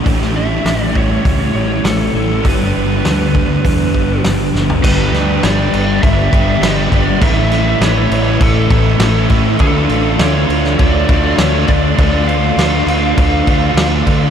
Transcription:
0.03 fingered electric bass A1, overdriven electric guitar A2 E3 G3 C#4 G4, distorted electric guitar A3, kick, open hi-hat
0.21 snare
0.36 lead electric guitar E5
0.65 fingered electric bass A1, snare, open hi-hat
0.83 lead electric guitar D5
0.95 lead electric guitar C#5, kick
1.25 fingered electric bass C#2, kick, open hi-hat
1.54 fingered electric bass A1, lead electric guitar C#5
1.84 fingered electric bass A1, lead electric guitar A4, snare, open hi-hat
2.13 fingered electric bass A1, distorted electric guitar A2 E3 A3
2.43 fingered electric bass G1, overdriven electric guitar G2 D3 G3 B3 D4 G4, kick, open hi-hat
2.48 lead electric guitar B4
2.77 fingered electric bass G1
3.05 fingered electric bass D2, snare, open hi-hat
3.35 kick
3.65 fingered electric bass E2, kick, open hi-hat
3.94 fingered electric bass G1, kick
4.24 fingered electric bass G1, snare, open hi-hat
4.53 fingered electric bass G1, distorted electric guitar G2 D3 G3, snare
4.70 floor tom
4.82 fingered electric bass G1, overdriven electric guitar G2 D3 G3 B3 D4 G4, lead electric guitar B4, kick, crash
5.12 fingered electric bass D2, overdriven electric guitar G3 B3 D4 G4, snare, crash
5.42 fingered electric bass G1, distorted electric guitar G2 D3, overdriven electric guitar G3 B3 D4 G4, lead electric guitar D5, snare, crash
5.47 distorted electric guitar G3
5.73 fingered electric bass G1, crash
6.02 fingered electric bass G1, distorted electric guitar G2 D3 G3, lead electric guitar E5, kick, crash
6.31 fingered electric bass G1, overdriven electric guitar G3 B3 D4 G4, kick, crash
6.61 fingered electric bass G1, distorted electric guitar G2 D3, overdriven electric guitar G3 B3 D4 G4, lead electric guitar D5, snare, crash
6.91 fingered electric bass G1, overdriven electric guitar G3 B3 D4 G4, kick, crash
7.21 fingered electric bass A1, overdriven electric guitar A2 E3 A3 C#4 E4, lead electric guitar E5, kick, crash
7.52 overdriven electric guitar A3 C#4 E4, snare, crash
7.80 fingered electric bass A1, distorted electric guitar A2, overdriven electric guitar E3 A3 C#4 E4, lead electric guitar C#5, snare, crash
8.11 fingered electric bass A1, lead electric guitar C#5, crash
8.39 fingered electric bass A1, distorted electric guitar A2 E3 A3, lead electric guitar A4, kick, crash
8.70 fingered electric bass A1, overdriven electric guitar A3 C#4 E4, kick, crash
8.99 fingered electric bass A1, distorted electric guitar A2, overdriven electric guitar E3 A3 C#4 E4, snare, crash
9.30 fingered electric bass A2, overdriven electric guitar A3 C#4 E4, kick, crash
9.59 fingered electric bass D2, overdriven electric guitar D3 A3 D4 F4, lead electric guitar A4, kick, crash
9.89 fingered electric bass A1, overdriven electric guitar A3 D4 F4, crash
10.19 fingered electric bass D2, overdriven electric guitar D3 A3 D4 F4, lead electric guitar C#5, snare, crash
10.49 fingered electric bass D2, crash
10.64 snare
10.78 fingered electric bass D2, distorted electric guitar D3 A3 D4, lead electric guitar D5, kick, crash
11.09 fingered electric bass D2, overdriven electric guitar A3 D4 F4, kick, crash
11.37 fingered electric bass D2, overdriven electric guitar D3 A3 D4 F4, lead electric guitar C#5, snare, crash
11.67 fingered electric bass D2, overdriven electric guitar A3 D4 F4, lead electric guitar D5, kick, crash
11.96 fingered electric bass D2, overdriven electric guitar D3 A3 D4 F4, lead electric guitar D5, kick, crash
12.27 overdriven electric guitar A3 D4 F4, lead electric guitar F5, crash
12.56 fingered electric bass D2, overdriven electric guitar D3 A3 D4 F4, snare, crash
12.86 fingered electric bass D2, crash
13.17 fingered electric bass D2, distorted electric guitar D3 A3 D4, kick, crash
13.46 fingered electric bass D2, overdriven electric guitar A3 D4 F4, kick, crash
13.74 fingered electric bass D2, overdriven electric guitar D3 A3 D4, snare, crash
13.79 overdriven electric guitar F4
14.06 fingered electric bass D3, overdriven electric guitar A3 D4 F4, kick, crash

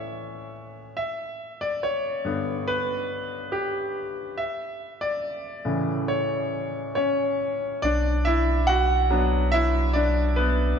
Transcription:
Already playing: grand piano A2 E3 C#4 C#5 D5 E5
0.97 grand piano E5
1.61 grand piano D5
1.83 grand piano C#5
2.24 grand piano G2 D3 B3
2.68 grand piano B4
3.52 grand piano G4
4.38 grand piano E5
5.01 grand piano D5
5.65 grand piano A2 C#3 E3
6.08 grand piano C#5
6.95 grand piano C#4 C#5
7.82 sub bass B1, grand piano D4 D5
8.25 grand piano E4 E5
8.67 grand piano F#4 F#5
9.10 grand piano F#3 B3 D4
9.52 grand piano E4 E5
9.94 grand piano D4 D5
10.36 grand piano B3 B4

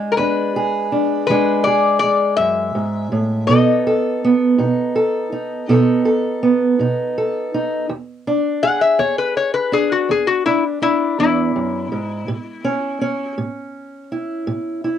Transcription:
Already playing: steel-string acoustic guitar G#3 D4 G#4
0.12 resonator guitar played with a steel bar A#4
0.17 steel-string acoustic guitar E2 D4, resonator guitar played with a steel bar B4
0.56 steel-string acoustic guitar G#4
0.92 steel-string acoustic guitar D4
1.27 steel-string acoustic guitar E2 G#3 D4, resonator guitar played with a steel bar B4
1.31 steel-string acoustic guitar G#4
1.64 steel-string acoustic guitar G#4, resonator guitar played with a steel bar D5
1.99 resonator guitar played with a steel bar D5
2.04 steel-string acoustic guitar G#3
2.37 steel-string acoustic guitar F#2, resonator guitar played with a steel bar E5
2.75 steel-string acoustic guitar G#2
3.12 steel-string acoustic guitar A2
3.47 steel-string acoustic guitar B2 B3 D#4 A4, resonator guitar played with a steel bar D#5
3.87 steel-string acoustic guitar A4
4.24 steel-string acoustic guitar B3
4.58 steel-string acoustic guitar B2 D#4
4.96 steel-string acoustic guitar A4
5.32 steel-string acoustic guitar D#4
5.69 steel-string acoustic guitar B2 B3 D#4 A4
5.76 resonator guitar played with a steel bar C#5
6.05 steel-string acoustic guitar A4
6.43 steel-string acoustic guitar B3
6.79 steel-string acoustic guitar B2 D#4
7.18 steel-string acoustic guitar A4
7.54 steel-string acoustic guitar D#4
7.89 steel-string acoustic guitar E2
8.27 steel-string acoustic guitar D4
8.63 steel-string acoustic guitar G#4, resonator guitar played with a steel bar F#5
8.81 resonator guitar played with a steel bar E5
8.99 steel-string acoustic guitar E2, resonator guitar played with a steel bar C#5
9.18 resonator guitar played with a steel bar B4
9.37 resonator guitar played with a steel bar C#5
9.54 resonator guitar played with a steel bar B4
9.72 steel-string acoustic guitar D4, resonator guitar played with a steel bar G#4
9.92 resonator guitar played with a steel bar F#4
10.09 steel-string acoustic guitar E2, resonator guitar played with a steel bar G#4
10.27 resonator guitar played with a steel bar F#4
10.46 steel-string acoustic guitar D4, resonator guitar played with a steel bar E4
10.82 steel-string acoustic guitar D4, resonator guitar played with a steel bar E4
11.19 steel-string acoustic guitar E2, resonator guitar played with a steel bar E4
11.56 steel-string acoustic guitar F#2
11.92 steel-string acoustic guitar G#2
12.28 steel-string acoustic guitar A2
12.65 steel-string acoustic guitar C#4
13.02 steel-string acoustic guitar C#4
13.38 steel-string acoustic guitar A2
14.12 steel-string acoustic guitar E4
14.47 steel-string acoustic guitar A2
14.84 steel-string acoustic guitar E4

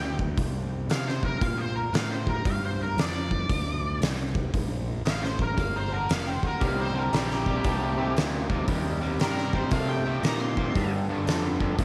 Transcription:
Already playing: fingered electric bass D2, lead electric guitar G4
0.19 kick
0.37 fingered electric bass C2, kick, open hi-hat
0.89 fingered electric bass C3, lead electric guitar F5, snare, open hi-hat
1.08 lead electric guitar C5, snare
1.23 lead electric guitar A#4, kick
1.41 fingered electric bass A#2, lead electric guitar F5, kick, open hi-hat
1.58 lead electric guitar C5
1.75 lead electric guitar A#4
1.93 fingered electric bass A2, lead electric guitar F5, snare, open hi-hat
2.11 lead electric guitar C5
2.27 lead electric guitar A#4, kick
2.45 fingered electric bass G2, lead electric guitar F5, kick, open hi-hat
2.65 lead electric guitar C5
2.83 lead electric guitar A#4
2.97 fingered electric bass F2, lead electric guitar D5, snare, open hi-hat
3.31 kick
3.49 fingered electric bass D2, kick, open hi-hat
4.01 fingered electric bass C2, snare, open hi-hat
4.35 kick
4.54 fingered electric bass A#1, kick, open hi-hat
5.05 fingered electric bass A1, lead electric guitar F5, snare, open hi-hat
5.23 lead electric guitar C5, snare
5.39 lead electric guitar A#4, kick
5.57 fingered electric bass G1, lead electric guitar A#3 F5, kick, open hi-hat
5.76 lead electric guitar D#3 C5
5.93 lead electric guitar D3 A#4
6.09 fingered electric bass F1, lead electric guitar A#3 F5, snare, open hi-hat
6.27 lead electric guitar D#3 C5
6.43 lead electric guitar D3, muted fingered electric bass stroke, kick
6.47 lead electric guitar A#4
6.60 fingered electric bass C2, overdriven electric guitar C3 G3, lead electric guitar A#3, tonewheel organ D4 D#4 G4 A#4, kick, open hi-hat
6.65 lead electric guitar F5
6.79 lead electric guitar D#3 C5
6.94 overdriven electric guitar C3 G3, lead electric guitar D3, tonewheel organ D4 D#4 G4 C5
6.99 lead electric guitar A#4
7.12 fingered electric bass A#1, lead electric guitar A#2 G4, overdriven electric guitar C3 G3, tonewheel organ D4 D#4 G4 A#4, snare, open hi-hat
7.31 snare
7.46 overdriven electric guitar C3 G3, tonewheel organ D4 D#4 G4 A#4, kick
7.64 fingered electric bass C2, overdriven electric guitar C3 A3, tonewheel organ D4 D#4 G4 A#4, kick, open hi-hat
7.98 overdriven electric guitar C3 A3, tonewheel organ D4 D#4 G4 A#4
8.16 fingered electric bass D2, overdriven electric guitar C3 A#3, tonewheel organ D4 D#4 G4 A#4, snare, open hi-hat
8.49 overdriven electric guitar C3 A#3, tonewheel organ D4 D#4 G4 A4, kick
8.68 fingered electric bass D#2, overdriven electric guitar C3 G3, tonewheel organ D4 D#4 G4 A#4, kick, open hi-hat
9.00 overdriven electric guitar C3 G3, tonewheel organ D4 D#4 G4 A#4
9.18 fingered electric bass G2, overdriven electric guitar C3 G3, lead electric guitar D#3 A#4, tonewheel organ D4 D#4 G4 A4, snare, open hi-hat
9.38 snare
9.53 overdriven electric guitar C3 G3, lead electric guitar D#3 C5, tonewheel organ D4 D#4 G4 C5, kick
9.70 fingered electric bass C3, overdriven electric guitar C3 A3, lead electric guitar A#3 F5, tonewheel organ D4 D#4 G4 A#4, kick, open hi-hat
9.87 lead electric guitar A#3 G5
10.04 overdriven electric guitar C3 A3, tonewheel organ D4 D#4 G4 A#4
10.22 fingered electric bass A#2, overdriven electric guitar C3 A#3, tonewheel organ D4 D#4 G4 A#4, lead electric guitar D#4 A#5, snare, open hi-hat
10.39 lead electric guitar D#4 C6
10.57 overdriven electric guitar C3 A#3, tonewheel organ D4 D#4 G4 C5, kick
10.75 fingered electric bass G2, overdriven electric guitar G2 D3, tonewheel organ D4 F4 A4 A#4, kick, open hi-hat
11.08 overdriven electric guitar G2 D3, tonewheel organ D4 F4 A4 A#4
11.27 fingered electric bass F2, overdriven electric guitar G2 D3, tonewheel organ D4 F4 A4 C5, snare, open hi-hat
11.60 overdriven electric guitar G2 D3, tonewheel organ D4 F4 A4 A#4, kick
11.78 overdriven electric guitar G2 E3, fingered electric bass G2, tonewheel organ D4 F4 A4 C5, kick, open hi-hat

